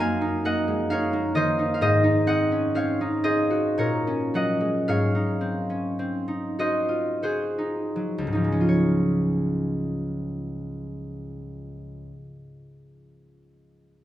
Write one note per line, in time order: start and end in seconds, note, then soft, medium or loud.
0.00 1.84 F#2 medium
0.00 0.44 A#3 medium
0.00 0.15 C4 medium
0.00 0.20 D#4 medium
0.00 1.85 A#4 medium
0.00 0.45 D#5 medium
0.00 0.89 F5 medium
0.00 0.44 F#5 medium
0.00 0.76 G#5 loud
0.00 1.84 A#5 loud
0.21 0.90 D#4 medium
0.45 1.12 A#3 medium
0.45 1.34 D#5 medium
0.45 1.85 F#5 medium
0.68 1.06 G#3 soft
0.90 1.58 D#4 medium
0.90 1.85 C#5 medium
0.90 1.67 F5 medium
1.13 1.85 A#3 medium
1.35 1.84 D#3 medium
1.35 1.81 C5 medium
1.35 1.81 D#5 medium
1.59 2.03 D#4 medium
1.74 1.86 F5 medium
1.81 3.83 G#2 medium
1.81 3.23 C5 medium
1.81 2.27 D#5 loud
2.04 3.00 D#4 medium
2.27 2.74 C4 medium
2.27 3.22 D#5 medium
2.27 3.09 F#5 loud
2.52 2.92 C#4 medium
2.75 3.83 C4 medium
2.75 3.77 C#5 medium
2.75 3.62 F5 medium
3.01 3.83 D#4 medium
3.24 3.82 G#4 medium
3.24 3.83 C5 medium
3.24 3.82 D#5 medium
3.50 3.98 F#4 soft
3.78 4.91 A#2 medium
3.78 4.91 A#4 medium
3.78 4.88 C#5 medium
4.07 4.92 C#4 medium
4.34 7.95 F#3 medium
4.34 6.58 D#5 medium
4.34 8.25 F#5 medium
4.61 5.06 G#3 soft
4.88 8.26 G#2 medium
4.88 8.67 C#5 medium
4.88 8.02 F5 medium
5.15 6.27 D#4 medium
5.41 5.98 C4 medium
5.70 6.19 C#4 soft
5.99 8.74 C4 soft
6.28 7.57 D#4 soft
6.59 7.21 F#4 soft
6.59 7.22 C5 medium
6.59 8.74 D#5 medium
6.89 7.46 F4 soft
7.22 8.74 F#4 soft
7.22 11.14 G#4 medium
7.22 8.74 C5 medium
7.58 8.31 D#4 soft
7.96 8.75 F#3 soft
8.18 12.08 C#2 medium
8.27 12.17 G#2 soft
8.33 12.17 F3 soft
8.33 8.74 D#4 soft
8.44 12.01 G#3 soft
8.52 12.09 C#4 soft
8.61 12.17 F4 soft
8.69 12.25 C#5 medium